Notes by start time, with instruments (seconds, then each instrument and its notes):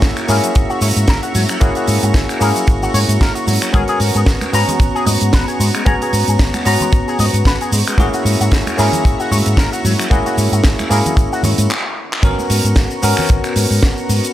Already playing: tine electric piano A#3 C#4 E4 G#4, analog synth pad F#4 E5 A#5 C#6
0.02 fingered electric bass G#1, kick, snare, closed hi-hat, shaker
0.17 finger snap, closed hi-hat, shaker
0.28 fingered electric bass G#2, tine electric piano A#3 C#4 E4 G#4, clean electric guitar A#4, open hi-hat, shaker
0.43 clean electric guitar F#3, closed hi-hat, shaker
0.55 fingered electric bass G#1, kick, closed hi-hat, shaker
0.70 clean electric guitar F#4, shaker
0.81 fingered electric bass G#2, clean electric guitar C#5, open hi-hat, shaker
0.96 fingered electric bass G#2, closed hi-hat, shaker
1.08 fingered electric bass G#1, clean electric guitar A#4, kick, snare, closed hi-hat, shaker
1.23 clean electric guitar F#4, closed hi-hat, shaker
1.35 fingered electric bass G#2, clean electric guitar F#3, open hi-hat, shaker
1.49 clean electric guitar F#3, finger snap, closed hi-hat, shaker
1.60 fingered electric bass G#1, tine electric piano A#3 C#4 E4 G#4, clean electric guitar F#4, kick, closed hi-hat, shaker
1.75 clean electric guitar F#4, closed hi-hat, shaker
1.87 fingered electric bass G#2, open hi-hat, shaker
2.03 fingered electric bass G#2, clean electric guitar F#4, closed hi-hat, shaker
2.14 fingered electric bass G#1, kick, snare, closed hi-hat, shaker
2.29 finger snap, closed hi-hat, shaker
2.40 fingered electric bass G#2, tine electric piano A#3 C#4 E4 G#4, clean electric guitar A#4, open hi-hat, shaker
2.56 clean electric guitar F#3, closed hi-hat, shaker
2.67 fingered electric bass G#1, kick, closed hi-hat, shaker
2.83 clean electric guitar F#4, shaker
2.94 fingered electric bass G#2, clean electric guitar C#5, open hi-hat, shaker
3.08 fingered electric bass G#2, closed hi-hat, shaker
3.21 fingered electric bass G#1, clean electric guitar A#4, kick, snare, closed hi-hat, shaker
3.35 clean electric guitar F#4, closed hi-hat, shaker
3.47 fingered electric bass G#2, clean electric guitar F#3, open hi-hat, shaker
3.62 clean electric guitar F#3, finger snap, closed hi-hat, shaker
3.73 fingered electric bass G#1, tine electric piano B3 C#4 F#4 A#4, analog synth pad B3, clean electric guitar G#4, kick, closed hi-hat, high conga, shaker
3.88 clean electric guitar G#4, closed hi-hat, shaker
4.00 fingered electric bass G#2, open hi-hat, shaker
4.14 fingered electric bass G#2, clean electric guitar G#4, closed hi-hat, shaker
4.26 fingered electric bass G#1, kick, snare, closed hi-hat, shaker
4.41 finger snap, closed hi-hat, high conga, shaker
4.53 fingered electric bass G#2, tine electric piano B3 C#4 F#4 A#5, clean electric guitar B4, open hi-hat, shaker
4.68 clean electric guitar G#3, closed hi-hat, low conga, shaker
4.80 fingered electric bass G#1, kick, closed hi-hat, shaker
4.95 clean electric guitar G#4, shaker
5.06 fingered electric bass G#2, clean electric guitar D#5, open hi-hat, high conga, shaker
5.21 fingered electric bass G#2, closed hi-hat, shaker
5.33 fingered electric bass G#1, clean electric guitar B4, kick, snare, closed hi-hat, shaker
5.48 clean electric guitar G#4, closed hi-hat, shaker
5.60 fingered electric bass G#2, clean electric guitar G#3, open hi-hat, shaker
5.75 clean electric guitar G#3, finger snap, closed hi-hat, shaker
5.85 fingered electric bass G#1, tine electric piano B3 C#4 F#4 A#5, clean electric guitar G#4, kick, closed hi-hat, high conga, shaker
6.02 clean electric guitar G#4, closed hi-hat, shaker
6.13 fingered electric bass G#2, open hi-hat, shaker
6.28 fingered electric bass G#2, clean electric guitar G#4, closed hi-hat, shaker
6.39 fingered electric bass G#1, kick, snare, closed hi-hat, shaker
6.54 finger snap, closed hi-hat, high conga, shaker
6.65 fingered electric bass G#2, tine electric piano B3 C#4 F#4 A#5, clean electric guitar B4, open hi-hat, shaker
6.80 clean electric guitar G#3, closed hi-hat, low conga, shaker
6.92 fingered electric bass G#1, kick, closed hi-hat, shaker
7.08 clean electric guitar G#4, shaker
7.19 fingered electric bass G#2, clean electric guitar D#5, open hi-hat, high conga, shaker
7.34 fingered electric bass G#2, closed hi-hat, shaker
7.45 fingered electric bass G#1, clean electric guitar B4, kick, snare, closed hi-hat, shaker
7.61 clean electric guitar G#4, closed hi-hat, shaker
7.72 fingered electric bass G#2, clean electric guitar G#3, open hi-hat, shaker
7.87 clean electric guitar G#3, finger snap, closed hi-hat, shaker
7.98 fingered electric bass G#1, tine electric piano A#3 C#4 E4 G#4, analog synth pad F#4 E5 A#5 C#6, clean electric guitar F#4, kick, closed hi-hat, high conga, shaker
8.14 clean electric guitar F#4, closed hi-hat, shaker
8.25 fingered electric bass G#2, open hi-hat, shaker
8.40 fingered electric bass G#2, clean electric guitar F#4, closed hi-hat, shaker
8.52 fingered electric bass G#1, kick, snare, closed hi-hat, shaker
8.67 finger snap, closed hi-hat, high conga, shaker
8.77 fingered electric bass G#2, tine electric piano A#3 C#4 E4 G#4, clean electric guitar A#4, open hi-hat, shaker
8.93 clean electric guitar F#3, closed hi-hat, low conga, shaker
9.05 fingered electric bass G#1, kick, closed hi-hat, shaker
9.20 clean electric guitar F#4, shaker
9.31 fingered electric bass G#2, clean electric guitar C#5, open hi-hat, high conga, shaker
9.46 fingered electric bass G#2, closed hi-hat, shaker
9.57 fingered electric bass G#1, clean electric guitar A#4, kick, snare, closed hi-hat, shaker
9.73 clean electric guitar F#4, closed hi-hat, shaker
9.85 fingered electric bass G#2, clean electric guitar F#3, open hi-hat, shaker
9.99 clean electric guitar F#3, finger snap, closed hi-hat, shaker
10.10 fingered electric bass G#1, tine electric piano A#3 C#4 E4 G#4, clean electric guitar F#4, kick, closed hi-hat, high conga, shaker
10.26 clean electric guitar F#4, closed hi-hat, shaker
10.38 fingered electric bass G#2, open hi-hat, shaker
10.52 fingered electric bass G#2, clean electric guitar F#4, closed hi-hat, shaker
10.64 fingered electric bass G#1, kick, snare, closed hi-hat, shaker
10.79 finger snap, closed hi-hat, high conga, shaker
10.89 fingered electric bass G#2, tine electric piano A#3 C#4 E4 G#4, clean electric guitar A#4, open hi-hat, shaker
11.06 clean electric guitar F#3, closed hi-hat, low conga, shaker
11.17 fingered electric bass G#1, kick, closed hi-hat, shaker
11.32 clean electric guitar F#4, shaker
11.43 fingered electric bass G#2, clean electric guitar C#5, open hi-hat, high conga, low conga, shaker
11.58 fingered electric bass G#2, closed hi-hat, shaker
11.71 clap
12.13 clap
12.22 fingered electric bass G#1, tine electric piano B3 C#4 F#4 A#4, analog synth pad B3 F#4 A#5 C#6, kick, closed hi-hat, cabasa, shaker
12.39 high conga, shaker
12.50 fingered electric bass G#2, open hi-hat, cabasa, shaker
12.64 fingered electric bass G#2, closed hi-hat, cabasa, shaker
12.76 fingered electric bass G#1, kick, snare, closed hi-hat, cabasa, shaker
12.91 shaker
13.02 fingered electric bass G#2, tine electric piano B3 C#4 F#4 A#4, open hi-hat, cabasa, shaker
13.17 finger snap, low conga, cabasa, shaker
13.29 fingered electric bass G#1, kick, closed hi-hat, cabasa, shaker
13.44 finger snap, closed hi-hat, shaker
13.56 fingered electric bass G#2, open hi-hat, cabasa, shaker
13.71 fingered electric bass G#2, cabasa, shaker
13.83 fingered electric bass G#1, kick, snare, cabasa, shaker
13.97 shaker
14.09 fingered electric bass G#2, open hi-hat, cabasa, shaker
14.23 closed hi-hat, cabasa, shaker